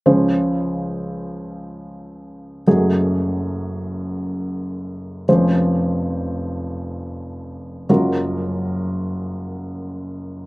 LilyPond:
\new Staff \with { instrumentName = "Felt piano" } { \clef bass \time 6/8 \key des \major \tempo 4. = 46 <des, des f des' c''>2. | <ges,, ges, ges a aes'>2. | <f,, f, f des' c''>2. | <ges,, ges, ges f' bes'>2. | }